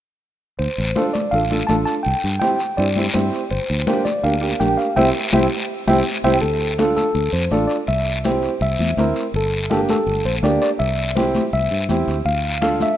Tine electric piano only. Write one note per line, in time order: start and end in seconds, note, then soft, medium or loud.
0.59 0.94 C5 medium
0.96 1.04 C5 medium
1.13 1.32 D5 medium
1.31 1.66 F5 medium
1.67 1.75 A5 medium
1.86 1.94 A5 medium
2.03 2.38 G5 medium
2.40 2.78 G5 medium
2.77 3.15 D5 medium
3.14 3.40 C5 medium
3.51 3.86 C5 medium
3.88 4.04 C5 medium
4.05 4.24 D5 medium
4.24 4.58 F5 medium
4.60 4.77 G5 medium
4.77 4.95 F5 medium
4.96 5.09 C5 medium
4.96 5.09 E5 medium
4.96 5.08 G5 medium
5.34 5.45 C5 medium
5.34 5.46 E5 medium
5.34 5.46 G5 medium
5.88 6.00 C5 medium
5.88 5.99 E5 medium
5.88 6.00 G5 medium
6.24 6.37 C5 medium
6.24 6.36 E5 medium
6.24 6.36 G5 medium
6.41 6.76 A4 medium
6.79 6.95 A4 medium
6.97 7.31 A4 medium
7.33 7.50 C5 medium
7.52 7.66 D5 medium
7.67 7.76 D5 medium
7.88 8.26 E5 medium
8.26 8.59 C5 medium
8.62 9.13 E5 medium
9.36 9.69 A4 medium
9.72 9.80 A4 medium
9.90 10.23 A4 medium
10.26 10.34 C5 medium
10.44 10.61 D5 medium
10.62 10.70 D5 medium
10.79 11.13 E5 medium
11.16 11.50 C5 medium
11.53 12.04 E5 medium
12.26 12.61 F5 medium
12.63 12.79 F5 medium
12.82 12.97 E5 medium